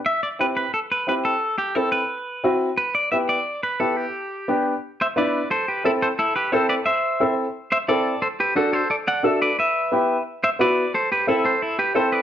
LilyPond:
<<
  \new Staff \with { instrumentName = "Clean electric guitar" } { \time 4/4 \key a \dorian \tempo 4 = 177 e''8 d''8 b'8 b'8 a'8 b'8 b'8 a'8~ | a'8 g'8 a'8 b'2 r8 | b'8 d''8 e''8 d''4 b'8 a'8 g'8~ | g'4. r4 <c'' e''>8 <b' d''>4 |
<a' c''>8 <g' b'>8 <e' a'>8 <a' c''>8 <e' a'>8 <g' b'>8 <a' c''>8 <b' d''>8 | <c'' e''>4. r4 <c'' e''>8 <a' d''>4 | <a' c''>8 <g' b'>8 <fis' a'>8 <a' c''>8 <a' d''>8 <d'' fis''>8 <a' e''>8 <b' d''>8 | <b' e''>2 r8 <c'' e''>8 <b' d''>4 |
<a' c''>8 <g' b'>8 <e' a'>8 <a' c''>8 <e' a'>8 <g' b'>8 <a' c''>8 <b' d''>8 | }
  \new Staff \with { instrumentName = "Upright piano" } { \time 4/4 \key a \dorian r4 <c' e' g'>8 r4. <c' e' g'>8 r8 | r4 <c' e' a'>8 r4. <c' e' fis'>8 r8 | r4 <b e' g'>8 r4. <b e' g'>8 r8 | r4 <b d' g'>8 r4. <b d' e'>8 r8 |
r4 <c' e' a'>8 r4. <c' e' a'>8 r8 | r4 <c' e' a'>8 r4. <c' e' a'>8 r8 | r4 <d' fis' a'>8 r4. <d' fis' a'>8 r8 | r4 <b e' g'>8 r4. <b e' fis'>8 r8 |
r4 <c' e' a'>8 r4. <c' e' a'>8 r8 | }
>>